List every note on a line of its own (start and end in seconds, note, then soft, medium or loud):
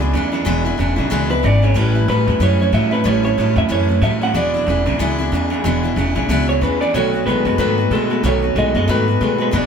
0.00 0.11 C#2 loud
0.00 0.11 E2 medium
0.00 0.11 B2 loud
0.00 0.12 E3 medium
0.00 0.14 G#3 medium
0.00 0.14 D4 medium
0.00 0.13 E4 medium
0.00 0.43 D5 medium
0.13 0.31 E2 medium
0.13 0.43 E2 medium
0.13 0.31 C#3 medium
0.13 0.33 E3 medium
0.13 0.33 G#3 medium
0.13 0.32 D4 medium
0.13 0.30 E4 medium
0.32 0.45 E2 medium
0.32 0.45 C#3 medium
0.32 0.45 E3 soft
0.32 0.45 G#3 medium
0.32 0.45 D4 medium
0.32 0.46 E4 medium
0.45 0.75 E1 loud
0.45 0.65 E2 loud
0.45 0.76 E2 medium
0.45 0.65 B2 medium
0.45 0.76 B2 loud
0.45 0.65 E3 loud
0.45 0.65 G#3 medium
0.45 0.65 D4 medium
0.45 0.63 E4 loud
0.65 0.77 E3 medium
0.65 0.78 G#3 medium
0.65 0.79 D4 medium
0.65 0.78 E4 medium
0.78 0.96 E1 medium
0.78 0.96 E2 medium
0.78 0.96 C#3 medium
0.78 0.97 E3 medium
0.78 0.97 G#3 medium
0.78 0.97 D4 medium
0.78 0.95 E4 medium
0.96 1.10 B1 medium
0.96 1.10 E2 medium
0.96 1.10 C#3 medium
0.96 1.10 E3 medium
0.96 1.10 G#3 medium
0.96 1.11 D4 medium
0.96 1.10 E4 medium
1.10 1.40 C#2 medium
1.10 1.30 E2 medium
1.10 1.41 E2 medium
1.10 1.30 B2 loud
1.10 1.41 B2 medium
1.10 1.30 E3 medium
1.10 1.30 G#3 loud
1.10 1.30 D4 loud
1.10 1.29 E4 loud
1.30 1.42 E3 soft
1.30 1.43 G#3 soft
1.30 1.43 D4 medium
1.30 1.43 E4 medium
1.30 1.45 B4 medium
1.43 1.73 G#1 medium
1.43 1.61 E2 medium
1.43 1.61 C#3 medium
1.43 1.62 E3 medium
1.43 1.62 G#3 medium
1.43 1.62 D4 medium
1.43 1.61 E4 medium
1.43 1.64 D5 medium
1.62 1.75 E2 medium
1.62 1.75 C#3 medium
1.62 1.74 E3 soft
1.62 1.75 G#3 soft
1.62 1.76 D4 soft
1.62 1.76 E4 medium
1.62 1.77 C#5 medium
1.74 2.05 A1 loud
1.74 1.94 A2 medium
1.74 2.06 A2 medium
1.74 1.95 E3 medium
1.74 2.06 E3 medium
1.74 1.95 G3 medium
1.74 1.95 C#4 medium
1.74 1.93 E4 medium
1.74 2.09 B4 medium
1.95 2.08 G3 soft
1.95 2.09 C#4 soft
1.95 2.08 E4 medium
2.08 2.25 A1 medium
2.08 2.25 A2 medium
2.08 2.27 E3 medium
2.08 2.26 F#3 medium
2.08 2.28 G3 medium
2.08 2.28 C#4 medium
2.08 2.26 E4 medium
2.08 2.42 B4 medium
2.27 2.39 E2 medium
2.27 2.39 A2 medium
2.27 2.39 F#3 medium
2.27 2.40 G3 soft
2.27 2.41 C#4 medium
2.27 2.41 E4 medium
2.40 2.69 F#2 medium
2.40 2.59 A2 medium
2.40 2.71 A2 medium
2.40 2.60 E3 medium
2.40 2.71 E3 medium
2.40 2.60 G3 medium
2.40 2.60 C#4 medium
2.40 2.58 E4 medium
2.40 2.60 C#5 medium
2.59 2.72 G3 soft
2.59 2.73 C#4 soft
2.59 2.73 E4 medium
2.59 2.74 C#5 medium
2.72 3.02 A2 medium
2.72 2.90 A2 medium
2.72 2.92 E3 medium
2.72 2.90 F#3 medium
2.72 2.92 G3 medium
2.72 2.92 C#4 medium
2.72 2.90 E4 medium
2.72 2.92 E5 medium
2.91 3.04 A2 medium
2.91 3.04 F#3 medium
2.91 3.04 G3 soft
2.91 3.04 C#4 soft
2.91 3.05 E4 medium
2.91 3.06 B4 medium
3.04 3.34 A1 loud
3.04 3.24 A2 medium
3.04 3.35 A2 medium
3.04 3.24 E3 medium
3.04 3.35 E3 medium
3.04 3.25 G3 medium
3.04 3.24 C#4 medium
3.04 3.22 E4 medium
3.04 3.23 C#5 medium
3.23 3.37 G3 soft
3.23 3.38 C#4 medium
3.23 3.37 E4 medium
3.23 3.57 C#5 medium
3.38 3.55 A1 medium
3.38 3.55 A2 medium
3.38 3.57 E3 medium
3.38 3.55 F#3 medium
3.38 3.57 G3 medium
3.38 3.56 C#4 medium
3.38 3.55 E4 medium
3.56 3.69 E2 medium
3.56 3.68 A2 medium
3.56 3.69 F#3 medium
3.56 3.68 G3 soft
3.56 3.69 C#4 soft
3.56 3.69 E4 medium
3.56 3.63 E5 loud
3.69 3.99 F#2 medium
3.69 3.89 A2 medium
3.69 3.99 A2 medium
3.69 3.89 E3 medium
3.69 4.00 E3 loud
3.69 3.89 G3 medium
3.69 3.89 C#4 medium
3.69 3.87 E4 medium
3.69 4.03 C#5 medium
3.89 4.02 G3 soft
3.89 4.03 C#4 medium
3.89 4.02 E4 medium
4.02 4.31 A2 medium
4.02 4.19 A2 medium
4.02 4.22 E3 medium
4.02 4.20 F#3 medium
4.02 4.22 G3 medium
4.02 4.22 C#4 medium
4.02 4.20 E4 medium
4.02 4.09 E5 loud
4.21 4.33 A2 medium
4.21 4.34 F#3 medium
4.21 4.35 G3 soft
4.21 4.36 C#4 soft
4.21 4.35 E4 medium
4.21 4.36 F#5 loud
4.34 4.64 E1 loud
4.34 4.64 E2 medium
4.34 4.54 E2 medium
4.34 4.65 B2 loud
4.34 4.54 B2 medium
4.34 4.55 E3 medium
4.34 4.54 G#3 medium
4.34 4.54 D4 medium
4.34 4.53 E4 medium
4.34 5.62 D5 medium
4.54 4.66 E3 soft
4.54 4.67 G#3 soft
4.54 4.68 D4 medium
4.54 4.67 E4 medium
4.66 4.85 E1 medium
4.66 4.84 E2 medium
4.66 4.84 C#3 medium
4.66 4.86 E3 medium
4.66 4.86 G#3 medium
4.66 4.86 D4 medium
4.66 4.85 E4 medium
4.86 4.98 B1 medium
4.86 4.97 E2 medium
4.86 4.99 C#3 medium
4.86 4.99 E3 soft
4.86 4.99 G#3 medium
4.86 4.99 D4 medium
4.86 5.00 E4 medium
4.99 5.29 C#2 medium
4.99 5.29 E2 medium
4.99 5.19 E2 medium
4.99 5.29 B2 loud
4.99 5.19 B2 loud
4.99 5.19 E3 medium
4.99 5.19 G#3 medium
4.99 5.18 D4 medium
4.99 5.17 E4 loud
5.18 5.31 E3 medium
5.18 5.32 G#3 medium
5.18 5.33 D4 medium
5.18 5.32 E4 medium
5.32 5.49 E2 medium
5.32 5.61 E2 medium
5.32 5.49 C#3 medium
5.32 5.51 E3 medium
5.32 5.51 G#3 medium
5.32 5.50 D4 medium
5.32 5.49 E4 medium
5.50 5.63 E2 medium
5.50 5.63 C#3 medium
5.50 5.64 E3 medium
5.50 5.64 G#3 medium
5.50 5.65 D4 medium
5.50 5.64 E4 medium
5.64 5.94 E1 loud
5.64 5.94 E2 medium
5.64 5.84 E2 loud
5.64 5.94 B2 loud
5.64 5.84 B2 medium
5.64 5.84 E3 medium
5.64 5.84 G#3 medium
5.64 5.83 D4 loud
5.64 5.82 E4 loud
5.83 5.95 E3 medium
5.83 5.96 G#3 medium
5.83 5.97 D4 medium
5.83 5.97 E4 medium
5.96 6.14 E1 medium
5.96 6.14 E2 medium
5.96 6.14 C#3 loud
5.96 6.16 E3 medium
5.96 6.16 G#3 medium
5.96 6.15 D4 medium
5.96 6.14 E4 medium
6.15 6.28 B1 medium
6.15 6.27 E2 medium
6.15 6.28 C#3 medium
6.15 6.30 E3 soft
6.15 6.30 G#3 medium
6.15 6.29 D4 medium
6.15 6.29 E4 medium
6.29 6.58 C#2 loud
6.29 6.59 E2 medium
6.29 6.49 E2 medium
6.29 6.59 B2 medium
6.29 6.49 B2 medium
6.29 6.49 E3 medium
6.29 6.49 G#3 medium
6.29 6.47 D4 medium
6.29 6.46 E4 loud
6.47 6.60 E3 soft
6.47 6.62 G#3 medium
6.47 6.62 D4 medium
6.47 6.61 E4 medium
6.47 6.63 C#5 medium
6.61 6.79 E2 medium
6.61 6.91 E2 medium
6.61 6.79 C#3 medium
6.61 6.81 E3 medium
6.61 6.81 G#3 medium
6.61 6.81 D4 medium
6.61 6.80 E4 medium
6.61 6.81 B4 medium
6.80 6.92 E2 medium
6.80 6.93 C#3 medium
6.80 6.94 E3 soft
6.80 6.95 G#3 soft
6.80 6.95 D4 medium
6.80 6.94 E4 medium
6.80 6.95 D5 medium
6.93 7.23 B1 medium
6.93 7.24 B2 medium
6.93 7.13 B2 medium
6.93 7.14 D#3 medium
6.93 7.24 F#3 medium
6.93 7.14 A3 medium
6.93 7.14 B3 medium
6.93 7.12 F#4 medium
6.93 7.25 C#5 medium
7.13 7.27 A3 soft
7.13 7.28 B3 medium
7.13 7.27 F#4 medium
7.26 7.44 B1 medium
7.26 7.43 B2 medium
7.26 7.46 D#3 medium
7.26 7.44 G#3 medium
7.26 7.46 A3 medium
7.26 7.58 B4 medium
7.30 7.45 B3 medium
7.30 7.44 F#4 medium
7.45 7.57 F#2 medium
7.45 7.58 B2 medium
7.45 7.58 G#3 medium
7.45 7.58 A3 soft
7.45 7.59 B3 soft
7.45 7.59 F#4 medium
7.58 7.88 G#2 medium
7.58 7.78 B2 medium
7.58 7.89 B2 medium
7.58 7.78 D#3 medium
7.58 7.89 F#3 loud
7.58 7.78 A3 medium
7.58 7.78 B3 medium
7.58 7.77 F#4 medium
7.58 7.93 B4 medium
7.78 7.91 A3 soft
7.78 7.92 B3 medium
7.78 7.91 F#4 medium
7.91 8.20 B2 medium
7.91 8.09 B2 medium
7.91 8.11 D#3 medium
7.91 8.09 G#3 loud
7.91 8.11 A3 medium
7.91 8.10 B3 medium
7.91 8.25 A4 medium
7.95 8.09 F#4 medium
8.10 8.22 B2 medium
8.10 8.23 G#3 medium
8.10 8.23 A3 soft
8.10 8.24 B3 soft
8.10 8.24 F#4 medium
8.23 8.53 B1 loud
8.23 8.43 B2 medium
8.23 8.54 B2 medium
8.23 8.43 D#3 medium
8.23 8.54 F#3 loud
8.23 8.43 A3 medium
8.23 8.43 B3 medium
8.23 8.41 F#4 loud
8.23 8.58 C#5 medium
8.42 8.56 A3 soft
8.42 8.57 B3 soft
8.42 8.56 F#4 medium
8.56 8.73 B1 medium
8.56 8.73 B2 medium
8.56 8.75 D#3 medium
8.56 8.73 G#3 medium
8.56 8.76 A3 medium
8.56 8.75 B3 medium
8.56 8.74 F#4 medium
8.56 8.76 D#5 medium
8.75 8.87 F#2 medium
8.75 8.87 B2 medium
8.75 8.87 G#3 medium
8.75 8.88 A3 soft
8.75 8.88 B3 soft
8.75 8.88 F#4 medium
8.75 8.90 D#5 loud
8.88 9.17 G#2 medium
8.88 9.07 B2 medium
8.88 9.18 B2 medium
8.88 9.07 D#3 medium
8.88 9.18 F#3 medium
8.88 9.08 A3 medium
8.88 9.08 B3 medium
8.88 9.06 F#4 medium
8.88 9.41 B4 loud
9.08 9.20 A3 soft
9.08 9.21 B3 soft
9.08 9.21 F#4 medium
9.21 9.50 B2 loud
9.21 9.38 B2 medium
9.21 9.40 D#3 medium
9.21 9.38 G#3 medium
9.21 9.40 A3 medium
9.21 9.39 B3 medium
9.21 9.37 F#4 medium
9.38 9.52 B2 medium
9.38 9.52 G#3 medium
9.38 9.53 A3 soft
9.38 9.53 B3 soft
9.38 9.52 F#4 medium
9.38 9.47 B4 medium
9.51 9.66 E1 loud
9.51 9.66 E2 medium
9.51 9.66 B2 medium
9.51 9.66 B2 loud
9.51 9.66 E3 medium
9.51 9.66 G#3 medium
9.51 9.66 D4 medium
9.51 9.66 E4 medium
9.56 9.66 D5 loud